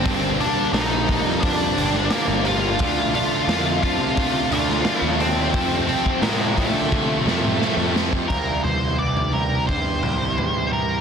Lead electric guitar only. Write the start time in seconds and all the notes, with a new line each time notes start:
Already playing: C4 C5
0.40 D4 D5
0.73 D#4 D#5
1.43 D4 D5
2.12 A#3 A#4
2.47 F4 F5
3.14 F4 F5
3.82 F4 F5
4.53 F4 F5
5.01 D#5
5.20 C4 C5
5.88 C4 C5
6.22 C4 A#4
6.58 A3 A4
8.28 A#4
8.64 C5
8.98 D5
9.33 A#4
9.67 C5
10.73 A#4